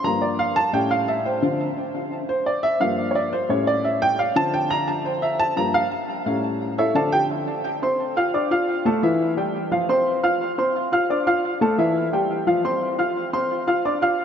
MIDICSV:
0, 0, Header, 1, 2, 480
1, 0, Start_track
1, 0, Key_signature, -1, "minor"
1, 0, Tempo, 345224
1, 1025, Time_signature, 4, 2, 24, 8
1, 19809, End_track
2, 0, Start_track
2, 0, Title_t, "Upright piano"
2, 0, Program_c, 0, 0
2, 54, Note_on_c, 0, 43, 60
2, 59, Note_on_c, 0, 53, 52
2, 61, Note_on_c, 0, 82, 100
2, 68, Note_on_c, 0, 58, 66
2, 295, Note_off_c, 0, 82, 0
2, 301, Note_on_c, 0, 74, 82
2, 535, Note_off_c, 0, 74, 0
2, 542, Note_on_c, 0, 77, 96
2, 744, Note_off_c, 0, 43, 0
2, 746, Note_off_c, 0, 53, 0
2, 751, Note_off_c, 0, 58, 0
2, 776, Note_off_c, 0, 77, 0
2, 779, Note_on_c, 0, 81, 111
2, 1015, Note_off_c, 0, 81, 0
2, 1015, Note_on_c, 0, 45, 57
2, 1023, Note_on_c, 0, 55, 50
2, 1023, Note_on_c, 0, 79, 97
2, 1030, Note_on_c, 0, 61, 69
2, 1257, Note_off_c, 0, 79, 0
2, 1262, Note_on_c, 0, 77, 93
2, 1497, Note_off_c, 0, 77, 0
2, 1504, Note_on_c, 0, 76, 77
2, 1738, Note_off_c, 0, 76, 0
2, 1749, Note_on_c, 0, 72, 83
2, 1933, Note_off_c, 0, 45, 0
2, 1938, Note_off_c, 0, 55, 0
2, 1941, Note_off_c, 0, 61, 0
2, 1979, Note_on_c, 0, 50, 52
2, 1989, Note_on_c, 0, 53, 50
2, 1992, Note_on_c, 0, 60, 65
2, 2195, Note_off_c, 0, 72, 0
2, 2302, Note_off_c, 0, 50, 0
2, 2308, Note_off_c, 0, 53, 0
2, 2309, Note_off_c, 0, 60, 0
2, 3184, Note_on_c, 0, 72, 86
2, 3420, Note_off_c, 0, 72, 0
2, 3425, Note_on_c, 0, 74, 91
2, 3658, Note_on_c, 0, 76, 101
2, 3660, Note_off_c, 0, 74, 0
2, 3894, Note_on_c, 0, 43, 52
2, 3897, Note_off_c, 0, 76, 0
2, 3902, Note_on_c, 0, 77, 95
2, 3903, Note_on_c, 0, 53, 50
2, 3908, Note_on_c, 0, 58, 58
2, 4323, Note_on_c, 0, 73, 69
2, 4353, Note_off_c, 0, 77, 0
2, 4360, Note_off_c, 0, 73, 0
2, 4385, Note_on_c, 0, 74, 90
2, 4587, Note_off_c, 0, 43, 0
2, 4591, Note_off_c, 0, 53, 0
2, 4594, Note_off_c, 0, 58, 0
2, 4621, Note_off_c, 0, 74, 0
2, 4626, Note_on_c, 0, 72, 90
2, 4857, Note_on_c, 0, 45, 60
2, 4862, Note_off_c, 0, 72, 0
2, 4864, Note_on_c, 0, 55, 55
2, 4866, Note_on_c, 0, 73, 81
2, 4872, Note_on_c, 0, 61, 66
2, 5102, Note_off_c, 0, 73, 0
2, 5107, Note_on_c, 0, 74, 96
2, 5342, Note_off_c, 0, 74, 0
2, 5346, Note_on_c, 0, 76, 84
2, 5582, Note_off_c, 0, 76, 0
2, 5589, Note_on_c, 0, 79, 116
2, 5777, Note_off_c, 0, 45, 0
2, 5781, Note_off_c, 0, 55, 0
2, 5785, Note_off_c, 0, 61, 0
2, 5824, Note_off_c, 0, 79, 0
2, 5826, Note_on_c, 0, 77, 91
2, 6058, Note_on_c, 0, 50, 59
2, 6062, Note_off_c, 0, 77, 0
2, 6068, Note_on_c, 0, 53, 62
2, 6068, Note_on_c, 0, 81, 127
2, 6075, Note_on_c, 0, 60, 70
2, 6303, Note_off_c, 0, 81, 0
2, 6307, Note_on_c, 0, 79, 102
2, 6541, Note_on_c, 0, 82, 125
2, 6543, Note_off_c, 0, 79, 0
2, 6780, Note_off_c, 0, 82, 0
2, 6781, Note_on_c, 0, 81, 88
2, 7020, Note_off_c, 0, 81, 0
2, 7023, Note_on_c, 0, 72, 81
2, 7261, Note_off_c, 0, 72, 0
2, 7261, Note_on_c, 0, 76, 92
2, 7500, Note_off_c, 0, 76, 0
2, 7501, Note_on_c, 0, 81, 116
2, 7691, Note_off_c, 0, 50, 0
2, 7695, Note_off_c, 0, 53, 0
2, 7699, Note_off_c, 0, 60, 0
2, 7735, Note_on_c, 0, 43, 61
2, 7740, Note_off_c, 0, 81, 0
2, 7742, Note_on_c, 0, 53, 56
2, 7745, Note_on_c, 0, 82, 103
2, 7751, Note_on_c, 0, 58, 58
2, 7982, Note_off_c, 0, 82, 0
2, 7985, Note_on_c, 0, 77, 114
2, 8063, Note_off_c, 0, 43, 0
2, 8067, Note_off_c, 0, 53, 0
2, 8072, Note_off_c, 0, 58, 0
2, 8131, Note_off_c, 0, 77, 0
2, 8703, Note_on_c, 0, 45, 59
2, 8714, Note_on_c, 0, 55, 50
2, 8721, Note_on_c, 0, 61, 61
2, 9432, Note_on_c, 0, 76, 95
2, 9437, Note_on_c, 0, 69, 77
2, 9437, Note_on_c, 0, 73, 74
2, 9438, Note_on_c, 0, 64, 70
2, 9620, Note_off_c, 0, 45, 0
2, 9626, Note_off_c, 0, 55, 0
2, 9630, Note_off_c, 0, 61, 0
2, 9650, Note_off_c, 0, 69, 0
2, 9659, Note_on_c, 0, 50, 55
2, 9666, Note_off_c, 0, 76, 0
2, 9668, Note_off_c, 0, 64, 0
2, 9668, Note_off_c, 0, 73, 0
2, 9668, Note_on_c, 0, 53, 51
2, 9670, Note_on_c, 0, 81, 93
2, 9671, Note_on_c, 0, 69, 86
2, 9673, Note_on_c, 0, 74, 80
2, 9673, Note_on_c, 0, 77, 76
2, 9678, Note_on_c, 0, 60, 66
2, 9904, Note_off_c, 0, 81, 0
2, 9905, Note_off_c, 0, 69, 0
2, 9906, Note_off_c, 0, 74, 0
2, 9906, Note_off_c, 0, 77, 0
2, 9906, Note_on_c, 0, 79, 117
2, 9913, Note_on_c, 0, 67, 84
2, 10052, Note_off_c, 0, 79, 0
2, 10057, Note_off_c, 0, 67, 0
2, 10349, Note_off_c, 0, 50, 0
2, 10354, Note_off_c, 0, 53, 0
2, 10359, Note_off_c, 0, 60, 0
2, 10877, Note_on_c, 0, 60, 80
2, 10881, Note_on_c, 0, 72, 77
2, 10886, Note_on_c, 0, 84, 79
2, 11268, Note_off_c, 0, 60, 0
2, 11271, Note_off_c, 0, 72, 0
2, 11274, Note_off_c, 0, 84, 0
2, 11356, Note_on_c, 0, 65, 88
2, 11359, Note_on_c, 0, 77, 87
2, 11362, Note_on_c, 0, 89, 80
2, 11551, Note_off_c, 0, 65, 0
2, 11553, Note_off_c, 0, 77, 0
2, 11555, Note_off_c, 0, 89, 0
2, 11593, Note_on_c, 0, 62, 75
2, 11597, Note_on_c, 0, 74, 74
2, 11601, Note_on_c, 0, 86, 80
2, 11789, Note_off_c, 0, 62, 0
2, 11792, Note_off_c, 0, 74, 0
2, 11794, Note_off_c, 0, 86, 0
2, 11832, Note_on_c, 0, 65, 91
2, 11838, Note_on_c, 0, 77, 90
2, 11841, Note_on_c, 0, 89, 82
2, 12225, Note_off_c, 0, 65, 0
2, 12229, Note_off_c, 0, 77, 0
2, 12231, Note_off_c, 0, 89, 0
2, 12311, Note_on_c, 0, 57, 86
2, 12315, Note_on_c, 0, 69, 81
2, 12319, Note_on_c, 0, 81, 83
2, 12508, Note_off_c, 0, 57, 0
2, 12510, Note_off_c, 0, 69, 0
2, 12513, Note_off_c, 0, 81, 0
2, 12553, Note_on_c, 0, 52, 81
2, 12556, Note_on_c, 0, 64, 83
2, 12559, Note_on_c, 0, 76, 89
2, 12945, Note_off_c, 0, 52, 0
2, 12947, Note_off_c, 0, 64, 0
2, 12949, Note_off_c, 0, 76, 0
2, 13027, Note_on_c, 0, 55, 81
2, 13030, Note_on_c, 0, 67, 72
2, 13038, Note_on_c, 0, 79, 75
2, 13422, Note_off_c, 0, 55, 0
2, 13424, Note_off_c, 0, 67, 0
2, 13428, Note_off_c, 0, 79, 0
2, 13507, Note_on_c, 0, 53, 83
2, 13511, Note_on_c, 0, 65, 90
2, 13515, Note_on_c, 0, 77, 79
2, 13705, Note_off_c, 0, 53, 0
2, 13707, Note_off_c, 0, 65, 0
2, 13709, Note_off_c, 0, 77, 0
2, 13750, Note_on_c, 0, 60, 86
2, 13752, Note_on_c, 0, 72, 88
2, 13758, Note_on_c, 0, 84, 90
2, 14143, Note_off_c, 0, 60, 0
2, 14144, Note_off_c, 0, 72, 0
2, 14148, Note_off_c, 0, 84, 0
2, 14227, Note_on_c, 0, 65, 83
2, 14231, Note_on_c, 0, 77, 92
2, 14236, Note_on_c, 0, 89, 86
2, 14621, Note_off_c, 0, 65, 0
2, 14623, Note_off_c, 0, 77, 0
2, 14626, Note_off_c, 0, 89, 0
2, 14711, Note_on_c, 0, 60, 82
2, 14713, Note_on_c, 0, 72, 85
2, 14719, Note_on_c, 0, 84, 80
2, 15103, Note_off_c, 0, 60, 0
2, 15104, Note_off_c, 0, 72, 0
2, 15108, Note_off_c, 0, 84, 0
2, 15185, Note_on_c, 0, 65, 88
2, 15192, Note_on_c, 0, 77, 82
2, 15196, Note_on_c, 0, 89, 89
2, 15383, Note_off_c, 0, 65, 0
2, 15387, Note_off_c, 0, 77, 0
2, 15389, Note_off_c, 0, 89, 0
2, 15432, Note_on_c, 0, 62, 75
2, 15435, Note_on_c, 0, 74, 68
2, 15441, Note_on_c, 0, 86, 76
2, 15627, Note_off_c, 0, 62, 0
2, 15629, Note_off_c, 0, 74, 0
2, 15632, Note_off_c, 0, 86, 0
2, 15666, Note_on_c, 0, 65, 90
2, 15670, Note_on_c, 0, 77, 86
2, 15672, Note_on_c, 0, 89, 86
2, 16060, Note_off_c, 0, 65, 0
2, 16062, Note_off_c, 0, 77, 0
2, 16063, Note_off_c, 0, 89, 0
2, 16145, Note_on_c, 0, 57, 85
2, 16148, Note_on_c, 0, 69, 89
2, 16156, Note_on_c, 0, 81, 83
2, 16342, Note_off_c, 0, 57, 0
2, 16344, Note_off_c, 0, 69, 0
2, 16349, Note_off_c, 0, 81, 0
2, 16383, Note_on_c, 0, 52, 83
2, 16385, Note_on_c, 0, 64, 86
2, 16390, Note_on_c, 0, 76, 89
2, 16777, Note_off_c, 0, 52, 0
2, 16778, Note_off_c, 0, 64, 0
2, 16782, Note_off_c, 0, 76, 0
2, 16860, Note_on_c, 0, 55, 78
2, 16864, Note_on_c, 0, 67, 73
2, 16869, Note_on_c, 0, 79, 75
2, 17255, Note_off_c, 0, 55, 0
2, 17258, Note_off_c, 0, 67, 0
2, 17261, Note_off_c, 0, 79, 0
2, 17334, Note_on_c, 0, 53, 83
2, 17341, Note_on_c, 0, 65, 84
2, 17343, Note_on_c, 0, 77, 85
2, 17535, Note_off_c, 0, 53, 0
2, 17539, Note_off_c, 0, 65, 0
2, 17540, Note_off_c, 0, 77, 0
2, 17581, Note_on_c, 0, 60, 88
2, 17582, Note_on_c, 0, 72, 83
2, 17587, Note_on_c, 0, 84, 83
2, 17975, Note_off_c, 0, 60, 0
2, 17976, Note_off_c, 0, 72, 0
2, 17979, Note_off_c, 0, 84, 0
2, 18053, Note_on_c, 0, 65, 80
2, 18057, Note_on_c, 0, 77, 81
2, 18061, Note_on_c, 0, 89, 80
2, 18450, Note_off_c, 0, 65, 0
2, 18453, Note_off_c, 0, 77, 0
2, 18455, Note_off_c, 0, 89, 0
2, 18534, Note_on_c, 0, 60, 78
2, 18537, Note_on_c, 0, 72, 83
2, 18540, Note_on_c, 0, 84, 88
2, 18930, Note_off_c, 0, 60, 0
2, 18932, Note_off_c, 0, 72, 0
2, 18934, Note_off_c, 0, 84, 0
2, 19010, Note_on_c, 0, 65, 88
2, 19014, Note_on_c, 0, 77, 90
2, 19020, Note_on_c, 0, 89, 83
2, 19211, Note_off_c, 0, 65, 0
2, 19214, Note_off_c, 0, 77, 0
2, 19217, Note_off_c, 0, 89, 0
2, 19258, Note_on_c, 0, 62, 73
2, 19262, Note_on_c, 0, 74, 77
2, 19264, Note_on_c, 0, 86, 81
2, 19456, Note_off_c, 0, 62, 0
2, 19458, Note_off_c, 0, 74, 0
2, 19459, Note_off_c, 0, 86, 0
2, 19490, Note_on_c, 0, 65, 88
2, 19497, Note_on_c, 0, 77, 85
2, 19501, Note_on_c, 0, 89, 89
2, 19809, Note_off_c, 0, 65, 0
2, 19809, Note_off_c, 0, 77, 0
2, 19809, Note_off_c, 0, 89, 0
2, 19809, End_track
0, 0, End_of_file